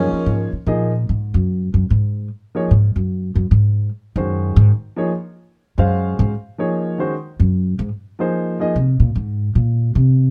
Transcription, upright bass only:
Already playing: F#2
0.12 muted upright bass stroke
0.26 G#2
0.53 muted upright bass stroke
0.66 A#2
1.09 G#2
1.34 F#2
1.74 F#2
1.90 G#2
2.71 G#2
2.96 F#2
3.35 F#2
3.51 G#2
4.16 F#2
4.56 G#2
5.78 F#2
6.19 G#2
7.40 F#2
7.79 G#2
8.76 C3
9.00 A#2
9.15 G#2
9.55 A#2
9.95 C3

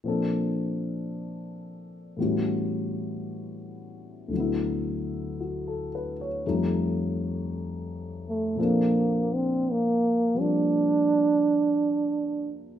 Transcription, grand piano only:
0.04 A#2 F3 C4 D4
0.08 A4
2.17 A2 E3 G3 B3
2.21 C#4 F#4
4.28 D2 D3
4.33 F#3 B3
4.40 E4
5.40 F#4
5.68 A4
5.95 B4
6.21 C#5
6.46 F2 F3 G3 A3 D#4
8.56 A#2 F3 A4
8.60 C4 D4
10.34 F3 G3 A#3 C4

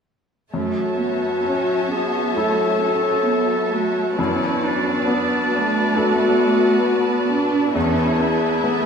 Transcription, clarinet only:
0.54 F#4
1.90 G#4
2.35 A4
3.73 F#4
4.18 E4
4.64 D4
5.96 F#4
7.75 G#4

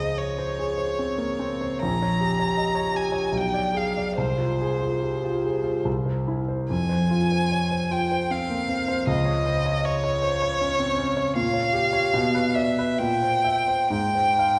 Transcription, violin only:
Already playing: D#5
0.18 C#5
1.81 A#5
2.96 G#5
3.37 G5
3.77 F5
4.18 C5
6.71 G#5
7.91 G5
8.31 F5
9.08 D#5
9.85 C#5
11.36 F5
12.55 E5
12.98 G5
13.91 G5

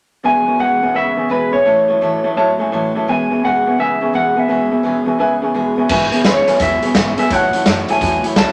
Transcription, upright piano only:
0.24 B4 E5 G#5
0.48 B4 E5 G#5
0.59 B4 E5 G#5
0.82 B4 E5 G#5
0.94 B4 E5 F#5
1.17 B4 E5 G#5
1.29 B4 E5 G#5
1.52 B4 E5 G#5
1.65 C#5 E5 A5
1.89 C#5 E5 A5
2.01 C#5 E5 A5
2.24 C#5 E5 A5
2.37 C#5 E5 A5
2.59 C#5 E5 G#5
2.72 C#5 E5 A5
2.96 C#5 E5 A5
3.09 B4 E5 G#5
3.31 B4 E5 G#5
3.44 B4 E5 G#5
3.67 B4 E5 G#5
3.80 B4 E5 G#5
4.02 B4 E5 G#5
4.14 B4 E5 G#5
4.36 B4 E5 G#5
4.48 B4 E5 G#5
4.71 B4 E5 G#5
4.83 B4 E5 G#5
5.07 B4 E5 G#5
5.20 B4 E5 G#5
5.42 B4 E5 G#5
5.56 B4 E5 G#5
5.77 B4 E5 G#5
5.90 B4 E5 G#5
6.11 B4 E5 G#5
6.47 B4 E5 G#5
6.60 B4 E5 G#5
6.84 B4 E5 G#5
6.96 B4 E5 G#5
7.18 B4 E5 G#5
7.31 C#5 E5 A5
7.54 C#5 E5 A5
7.67 C#5 E5 A5
7.89 C#5 E5 A5
8.01 C#5 E5 A5
8.25 C#5 E5 B5
8.37 C#5 E5 A5

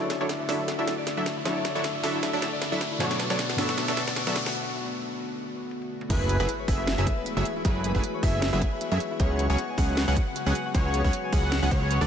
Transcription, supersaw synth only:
Already playing: F#3 D4 E4 A4 C#5
0.21 F#3 D4 E4 A4 C#5
0.49 F#3 D4 E4 A4 E5
0.79 F#3 D4 E4 A4 E5
1.17 F#3 D4 E4 A4 E5
1.45 F#3 D4 E4 A4 C#5
1.75 F#3 D4 E4 A4 C#5
2.04 F#3 D4 E4 A4 E5
2.33 F#3 D4 E4 A4 E5
2.72 F#3 D4 E4 A4 E5
3.00 F#3 B3 D4 A4 C#5
3.30 F#3 B3 D4 A4 C#5
3.58 F#3 B3 D4 A4 E5
3.88 F#3 B3 D4 A4 E5
4.27 F#3 B3 D4 A4 E5
6.10 F#3 A3 E4 G#4 B4
6.40 F#3 A3 E4 G#4 B4
6.68 F#3 A3 E4 G#4 E5
6.98 F#3 A3 E4 G#4 E5
7.37 F#3 A3 E4 G#4 E5
7.65 F#3 A3 E4 G#4 B4
7.95 F#3 A3 E4 G#4 B4
8.23 F#3 A3 E4 G#4 E5
8.53 F#3 A3 E4 G#4 E5
8.92 F#3 A3 E4 G#4 E5
9.20 F#3 B3 C#4 G#4 C#5
9.50 F#3 B3 C#4 G#4 C#5
9.78 F#3 B3 C#4 G#4 F#5
10.08 F#3 B3 C#4 G#4 F#5
10.46 F#3 B3 C#4 G#4 F#5
10.75 F#3 B3 C#4 G#4 C#5
11.05 F#3 B3 C#4 G#4 C#5
11.33 F#3 B3 C#4 G#4 F#5
11.63 F#3 B3 C#4 G#4 F#5
11.71 F#3 B3 C#4 G#4 C#5
12.01 F#3 D4 E4 A4 D5

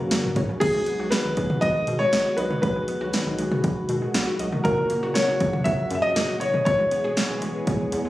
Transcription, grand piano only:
Already playing: A#4
0.60 G#4
1.11 B4
1.61 D#5
1.99 C#5
2.37 B4
2.62 B4
4.64 A#4
5.14 C#5
5.64 E5
5.95 E5
6.02 D#5
6.40 C#5
6.65 C#5

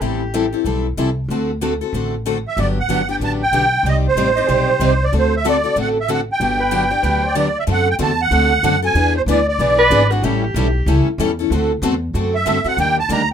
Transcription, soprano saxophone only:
0.00 G4
4.36 D#5
4.48 G4
6.60 B4
6.91 D5
7.03 B4
7.22 C5
7.36 D5
9.78 B4
10.10 F#4
10.23 G4
10.43 G4

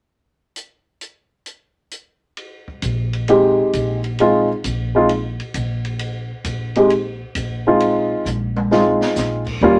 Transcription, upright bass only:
2.82 A#1
3.74 A#1
4.64 A#1
5.54 A#1
6.44 A#1
7.35 A#1
8.25 A#1
9.16 A#1
9.61 D#2

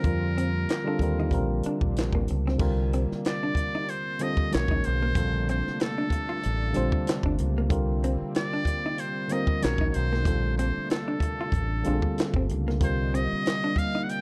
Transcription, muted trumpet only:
Already playing: A#4
3.27 D5
3.90 C5
4.22 D#5
4.54 C#5
4.85 C5
5.50 C5
5.82 A4
8.36 D5
9.00 C5
9.32 D#5
9.63 C#5
9.90 C#5
9.95 C5
10.58 C5
10.91 A4
12.84 C5
13.15 D#5
13.78 F5
14.04 F#5
14.10 G5

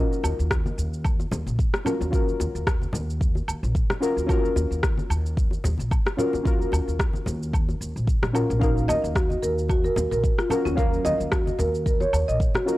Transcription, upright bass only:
0.24 D#2
0.39 D#2
0.78 D#2
1.32 D#2
1.47 A#1
2.00 D#2
2.40 D#2
2.55 D#2
2.94 D#2
3.48 D#2
3.63 A#1
4.17 D#2
4.56 D#2
4.71 D#2
5.10 D#2
5.64 D#2
5.79 A#1
6.33 D#2
6.73 D#2
6.87 D#2
7.26 D#2
7.81 D#2
7.96 A#1
8.23 A#1
8.50 A#1
8.89 D#2
9.04 D#2
9.43 D#2
9.96 D#2
10.11 A#1
10.65 D#2
11.05 D#2
11.20 D#2
11.59 D#2
12.13 D#2
12.28 A#1

